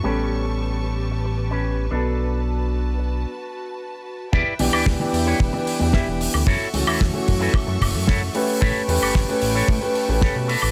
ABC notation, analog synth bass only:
X:1
M:4/4
L:1/16
Q:1/4=112
K:Edor
V:1 name="Analog synth bass" clef=bass
A,,,12- A,,,2 B,,,2- | B,,,8 z8 | E,, z B,,, D,, D,, z E,,2 E,,, z2 E,,2 E,,,2 D,, | F,, z C,, E,, E,, z F,,2 z F,, F,,, F,,3 z2 |
A,,, z E,, G,,, G,,, z A,,,2 A,, z2 A,,,2 B,,2 A,,, |]